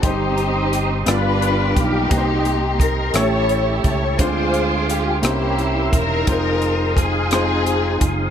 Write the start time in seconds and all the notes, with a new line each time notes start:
0.02 G1 G2 C4 D#4 G4 C5 D#5 C6 D#6, kick, closed hi-hat
0.38 closed hi-hat
0.73 cross-stick, closed hi-hat
1.05 G1 G2 B3 D4 F4 G4 B4 D5 F5 B5 D6, cross-stick, closed hi-hat
1.42 closed hi-hat
1.75 B1 A#3 D#4 G4, kick, closed hi-hat
2.09 C2 C3 A#3 C4 D#4 G4 B4 D#5 A#5 C6, kick, closed hi-hat
2.18 C5
2.45 closed hi-hat
2.79 A#4, kick, closed hi-hat
3.14 A1 A2 A3 C#4 E4 G4 C#5 E5 A5 C#6, cross-stick, closed hi-hat
3.49 closed hi-hat
3.83 C#2 C#5, kick, closed hi-hat
4.18 D2 D3 G#3 C4 D4 F4 G#4 C5 F5 C6 D6, kick, closed hi-hat
4.54 closed hi-hat
4.88 G4, cross-stick, closed hi-hat
5.22 C2 C3 A#3 C#4 D#4 E4 G4 A#4 C5 E6, cross-stick, closed hi-hat
5.29 E4
5.59 closed hi-hat
5.92 E1 D#4 A#4, kick, closed hi-hat
6.27 F1 G#3 C4 D#4 F4 G#4 C5 F5 C6 D#6, kick, closed hi-hat
6.62 closed hi-hat
6.97 C4 D#4 G#4, kick, closed hi-hat
7.31 G#3 C4 D#4 F4 C5, cross-stick, closed hi-hat
7.66 closed hi-hat
8.01 F#1, kick, closed hi-hat